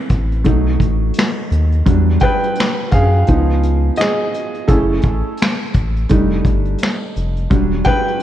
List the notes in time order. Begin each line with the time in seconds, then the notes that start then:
Already playing: E3 A3 C4 E4 B4
0.09 A1, kick, closed hi-hat
0.32 closed hi-hat
0.44 B1 F#3 A3 D#4, kick, closed hi-hat
0.80 A1, kick, closed hi-hat
1.14 closed hi-hat
1.19 finger snap, snare
1.51 D#2, closed hi-hat
1.72 closed hi-hat
1.86 E2 F#3 G3 D4, kick, closed hi-hat
2.19 B4 G5, kick, closed hi-hat
2.43 closed hi-hat
2.55 closed hi-hat
2.60 finger snap, snare
2.91 F#2 G#4 F5, kick, closed hi-hat
3.27 C#2 F3 B3 D#4, kick, closed hi-hat
3.63 closed hi-hat
3.96 G#4 D#5, closed hi-hat
4.01 finger snap, snare
4.34 closed hi-hat
4.54 closed hi-hat
4.68 F#1 A3 C#4 E4 G#4 A4, kick, closed hi-hat
5.02 A1, kick, closed hi-hat
5.37 closed hi-hat
5.42 finger snap, snare
5.74 A1, kick, closed hi-hat
5.96 closed hi-hat
6.09 F1 G3 A3 D4 D#4, kick, closed hi-hat
6.45 G1, kick, closed hi-hat
6.65 closed hi-hat
6.78 closed hi-hat
6.83 finger snap, snare
7.16 F1, closed hi-hat
7.36 closed hi-hat
7.50 E1 F#3 G3 D4, kick, closed hi-hat
7.84 B4 G5, kick, closed hi-hat
8.08 closed hi-hat
8.20 closed hi-hat